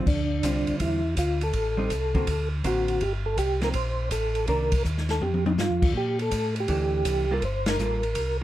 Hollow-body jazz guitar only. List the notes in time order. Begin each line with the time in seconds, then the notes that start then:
0.44 D3 G3 C4 F4
1.77 G3 C4 D#4
2.14 D3 A#3 C4 F#4
2.64 D3 A#3 C4 F#4
3.62 F3 A#3 C4
4.48 D#3 A#3 D4
6.68 E3 A3 D4
7.31 G3 A#3 F4 A4
7.80 G3 A#3 F4 A4